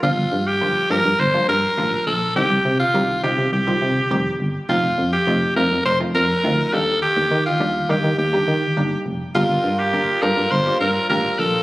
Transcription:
<<
  \new Staff \with { instrumentName = "Alto saxophone" } { \time 4/4 \key g \minor \tempo 4 = 103 f'8. g'8. bes'8 c''8 bes'4 a'8 | g'8. f'8. g'8 g'4. r8 | f'8. g'8. bes'8 c''8 bes'4 a'8 | g'8. f'8. g'8 g'4. r8 |
f'8. g'8. bes'8 c''8 bes'8 bes'8 a'8 | }
  \new Staff \with { instrumentName = "Accordion" } { \time 4/4 \key g \minor r1 | r1 | r1 | r1 |
<g f' bes'>1 | }
  \new Staff \with { instrumentName = "Synth pluck" } { \time 4/4 \key g \minor <f g bes d' f'>8. r16 <f g bes d' f'>16 r16 <f g bes d' f'>8 r16 <f g bes d' f'>8 r16 <f g bes d' f'>8. r16 | <ees g c' ees' g'>8. r16 <ees g c' ees' g'>16 r16 <ees g c' ees' f'>8 r16 <ees g c' ees' f'>8 r16 <ees g c' ees' g'>8. r16 | <f a c' ees' f'>8. r16 <f a c' ees' f'>16 r16 <f a c' ees' f'>8 r16 <f a c' ees' f'>8 r16 <f a c' ees' f'>8 <g bes d' ees' g'>8~ | <g bes d' ees' g'>8. r16 <g bes d' ees' g'>16 r16 <g bes d' ees' g'>8 r16 <g bes d' ees' g'>8 r16 <g bes d' ees' g'>8. r16 |
<g bes d' f' g'>8. r16 <g bes d' f' bes'>16 r16 <g bes d' f' a'>8 r16 <g bes d' f' g'>8 r16 <g bes d' f' g'>8. r16 | }
  \new Staff \with { instrumentName = "FM bass" } { \clef bass \time 4/4 \key g \minor g,,16 g,,16 g,8 g,,8 g,16 g,16 g,,8 g,8 a,,8 bes,,8 | c,16 c,16 c8 c,8 c16 c16 c,8 c8 f,,8 g,,8 | f,,16 f,,16 f,8 f,,8 f,16 f,16 f,,8 f,8 d,8 ees,8~ | ees,16 ees,16 ees8 ees,8 ees16 ees16 ees,8 ees8 g,,8 f,,8 |
g,,16 g,,16 g,8 g,,8 g,16 g,16 g,,8 g,8 a,,8 bes,,8 | }
>>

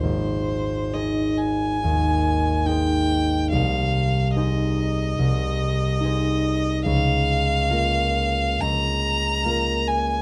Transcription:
<<
  \new Staff \with { instrumentName = "Violin" } { \time 4/4 \key aes \major \tempo 4 = 71 c''4 ees''8 aes''4. g''4 | f''4 ees''2. | f''2 bes''4. aes''8 | }
  \new Staff \with { instrumentName = "Harp" } { \time 4/4 \key aes \major <aes,, ees'>4 <ees' aes' c''>4 ees,4 <ees' aes' c''>4 | c,4 <ees' aes' c''>4 c,4 <ees' aes' c''>4 | des,4 <bes f' bes'>4 des,4 <bes f' bes'>4 | }
>>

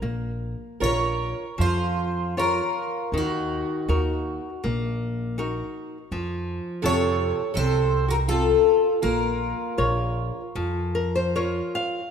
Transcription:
<<
  \new Staff \with { instrumentName = "Twelve-string acoustic guitar" } { \time 4/4 \key bes \minor \tempo 4 = 79 r4 des''4 c''4 bes'4 | ges'2 r2 | r4 des''4 c''8. bes'16 a'4 | bes'2. r4 | }
  \new Staff \with { instrumentName = "Nylon-string guitar" } { \time 4/4 \key bes \minor << { r1 | r1 | r1 | r2 r8 bes'16 c''16 des''8 f''8 | } \\ { bes4 <f' bes' des''>4 f4 <f' bes' des''>4 | ees4 <ees' ges' bes'>4 bes4 <ees' ges' bes'>4 | f4 <c f' a'>4 c4 <c' f' a'>4 | bes4 <f' bes' des''>4 f4 <f' bes' des''>4 | } >> }
  \new Staff \with { instrumentName = "Twelve-string acoustic guitar" } { \time 4/4 \key bes \minor r4 bes'4 f'4 f'4 | ees'2 r2 | r4 a'4 a'8. ges'16 f'4 | f'2. r4 | }
  \new Staff \with { instrumentName = "Upright bass" } { \clef bass \time 4/4 \key bes \minor bes,,4 bes,,4 f,2 | ees,4 ees,4 bes,,2 | f,4 f,4 c,2 | bes,,4 bes,,4 f,2 | }
>>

